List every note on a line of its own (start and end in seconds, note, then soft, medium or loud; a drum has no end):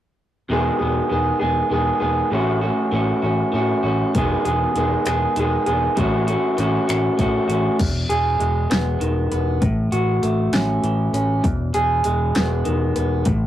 0.49 0.68 E1 medium
0.49 1.10 E2 medium
0.49 1.10 B2 medium
0.49 0.81 D#3 medium
0.49 0.80 G#3 medium
0.49 0.79 B3 medium
0.49 0.78 G#4 medium
0.79 0.99 E1 medium
0.79 1.08 D#3 soft
0.79 1.09 G#3 medium
0.79 1.11 B3 medium
0.79 1.12 G#4 medium
1.09 1.30 E1 medium
1.09 1.42 D#3 medium
1.09 1.41 G#3 medium
1.09 1.40 B3 medium
1.09 1.38 G#4 medium
1.40 1.60 E1 medium
1.40 1.69 D#3 soft
1.40 1.70 G#3 soft
1.40 1.71 B3 soft
1.40 1.72 G#4 medium
1.70 1.90 E1 medium
1.70 2.03 D#3 medium
1.70 2.01 G#3 medium
1.70 2.00 B3 medium
1.70 1.99 G#4 medium
2.00 2.20 E1 medium
2.00 2.31 D#3 soft
2.00 2.30 G#3 soft
2.00 2.30 B3 medium
2.00 2.29 G#4 medium
2.31 2.69 A1 medium
2.31 2.92 A2 medium
2.31 2.91 E3 medium
2.31 2.64 A3 medium
2.31 2.62 C#4 medium
2.31 2.60 F#4 medium
2.61 2.91 A3 medium
2.61 2.93 C#4 medium
2.61 2.94 F#4 medium
2.91 3.11 A1 medium
2.91 3.51 E3 medium
2.91 3.24 A3 medium
2.91 3.23 C#4 medium
2.91 3.21 F#4 medium
3.22 3.42 A1 medium
3.22 3.53 A3 soft
3.22 3.54 C#4 medium
3.22 3.54 F#4 medium
3.52 3.72 A2 medium
3.52 4.15 E3 medium
3.52 3.86 A3 medium
3.52 3.84 C#4 medium
3.52 3.82 F#4 medium
3.83 4.03 A1 medium
3.83 4.13 C#4 medium
3.83 4.12 F#4 medium
3.87 4.14 A3 soft
4.14 4.34 E1 medium
4.14 4.75 E2 medium
4.14 4.76 B2 medium
4.14 4.47 D#3 medium
4.14 4.46 G#3 medium
4.14 4.46 B3 medium
4.14 4.44 G#4 medium
4.14 kick medium
4.14 closed hi-hat medium
4.45 4.64 E1 medium
4.45 4.74 D#3 soft
4.45 4.76 G#3 medium
4.45 4.77 B3 medium
4.45 4.78 G#4 medium
4.45 closed hi-hat soft
4.76 4.94 E1 medium
4.76 5.09 D#3 medium
4.76 5.07 G#3 medium
4.76 5.06 B3 medium
4.76 5.05 G#4 medium
4.76 closed hi-hat medium
5.06 5.25 E1 medium
5.06 5.36 G#3 soft
5.06 5.38 B3 medium
5.06 5.39 G#4 medium
5.06 finger snap medium
5.06 closed hi-hat medium
5.10 5.35 D#3 soft
5.36 5.55 E1 medium
5.36 5.68 D#3 medium
5.36 5.67 G#3 medium
5.36 5.66 B3 medium
5.36 5.65 G#4 medium
5.36 closed hi-hat soft
5.66 5.86 E1 medium
5.66 5.96 D#3 medium
5.66 5.96 G#3 medium
5.66 5.96 B3 medium
5.66 5.95 G#4 medium
5.66 closed hi-hat soft
5.95 6.35 A1 medium
5.95 6.57 A2 medium
5.95 6.56 E3 medium
5.95 6.29 A3 medium
5.95 6.28 C#4 medium
5.95 6.26 F#4 medium
5.95 kick medium
5.95 closed hi-hat medium
6.27 6.57 A3 soft
6.27 6.58 C#4 medium
6.27 6.59 F#4 medium
6.27 closed hi-hat medium
6.57 6.77 A1 medium
6.57 7.16 E3 medium
6.57 6.90 A3 medium
6.57 6.88 C#4 medium
6.57 6.86 F#4 medium
6.57 closed hi-hat medium
6.87 7.08 A1 medium
6.87 7.17 A3 soft
6.87 7.18 C#4 medium
6.87 7.20 F#4 medium
6.87 finger snap medium
6.87 closed hi-hat medium
7.17 7.38 A2 medium
7.17 7.77 E3 medium
7.17 7.50 A3 medium
7.17 7.49 C#4 medium
7.17 7.46 F#4 medium
7.17 kick medium
7.17 closed hi-hat medium
7.48 7.67 A1 medium
7.48 7.79 A3 medium
7.48 7.78 C#4 medium
7.48 7.77 F#4 medium
7.48 closed hi-hat medium
7.79 8.06 E1 medium
7.79 9.31 E2 medium
7.79 kick medium
7.79 closed hi-hat medium
7.79 crash medium
8.09 8.36 E1 medium
8.09 9.61 G#4 medium
8.09 closed hi-hat medium
8.40 8.66 E1 medium
8.40 9.61 G#3 medium
8.40 closed hi-hat medium
8.70 8.97 E1 medium
8.70 9.30 B3 medium
8.70 snare loud
8.70 closed hi-hat medium
9.00 9.27 E1 medium
9.00 9.61 D#3 medium
9.00 closed hi-hat medium
9.32 9.58 E1 medium
9.32 9.62 B3 medium
9.32 closed hi-hat medium
9.62 9.88 A1 medium
9.62 11.14 A2 medium
9.62 kick medium
9.62 closed hi-hat medium
9.92 10.19 A1 medium
9.92 11.44 F#4 medium
9.92 closed hi-hat medium
10.23 10.49 A1 medium
10.23 11.44 A3 medium
10.23 closed hi-hat medium
10.53 10.79 A1 medium
10.53 11.12 C#4 medium
10.53 snare loud
10.53 closed hi-hat medium
10.83 11.10 A1 medium
10.83 12.65 E3 medium
10.83 closed hi-hat medium
11.13 11.40 A1 medium
11.13 11.44 C#4 medium
11.13 closed hi-hat medium
11.43 11.71 E1 medium
11.43 12.95 E2 medium
11.43 kick loud
11.43 closed hi-hat medium
11.74 12.01 E1 medium
11.74 13.26 G#4 medium
11.74 closed hi-hat medium
12.04 12.31 E1 medium
12.04 13.26 G#3 medium
12.04 closed hi-hat medium
12.35 12.62 E1 medium
12.35 12.95 B3 medium
12.35 snare loud
12.35 closed hi-hat medium
12.65 12.92 E1 medium
12.65 13.26 D#3 medium
12.65 closed hi-hat soft
12.96 13.22 E1 medium
12.96 13.26 B3 medium
12.96 closed hi-hat medium
13.25 13.47 A1 medium
13.25 13.47 A2 medium
13.25 kick medium
13.25 closed hi-hat medium